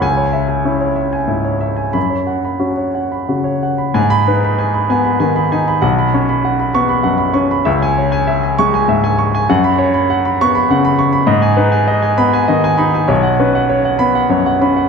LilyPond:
<<
  \new Staff \with { instrumentName = "Grand piano" } { \time 3/4 \key gis \minor \tempo 4 = 98 << { gis''8 r2 r8 | b''8 r2 r8 | r16 b''8 r2 r16 | r4. cis'''8 r4 |
r4. cis'''8 r4 | r4. cis'''8 r4 | r4. b''8 r4 | r4. b''8 r4 | } \\ { r16 cis''16 e''16 gis''16 e'16 cis''16 e''16 gis''16 e'16 cis''16 e''16 gis''16 | r16 cis''16 fis''16 b''16 fis'16 cis''16 fis''16 b''16 fis'16 cis''16 fis''16 b''16 | gis''8 b'16 b''16 gis''16 b''16 gis''16 b''16 gis''16 b''16 gis''16 b''16 | fis''16 b''16 cis''16 b''16 fis''16 b''8 b''16 fis''16 b''16 cis'''16 b''16 |
e''16 gis''16 cis''16 gis''16 e''16 gis''8 gis''16 e''16 gis''16 cis'''16 gis''16 | fis''16 b''16 cis''16 b''16 fis''16 b''8 b''16 fis''16 b''16 cis'''16 b''16 | dis''16 gis''16 b'16 gis''16 dis''16 gis''8 gis''16 dis''16 gis''16 b''16 gis''16 | cis''16 fis''16 b'16 fis''16 cis''16 fis''8 fis''16 cis''16 fis''16 b''16 fis''16 | } >> }
  \new Staff \with { instrumentName = "Grand piano" } { \clef bass \time 3/4 \key gis \minor cis,4 cis'4 gis,4 | fis,4 cis'4 cis4 | gis,8 dis'4 b8 dis8 dis'8 | b,,8 cis'4 b8 fis,8 cis'8 |
cis,4. gis8 gis,4 | fis,4. b8 cis4 | gis,8 dis'4 b8 dis8 dis'8 | b,,8 cis'4 b8 fis,8 cis'8 | }
>>